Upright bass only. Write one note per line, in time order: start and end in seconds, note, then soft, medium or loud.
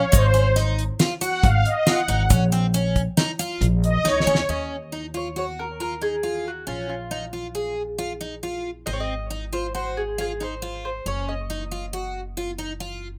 0.13 0.88 G#1 loud
1.43 1.62 G#1 loud
2.08 2.27 G#1 medium
2.30 3.05 A#1 loud
3.61 3.99 A#1 loud
4.04 4.24 C#2 medium
4.26 4.46 D#2 medium
4.49 6.64 D#2 medium
6.68 8.83 A#1 medium
8.87 11.02 G#1 medium
11.06 13.18 F#1 medium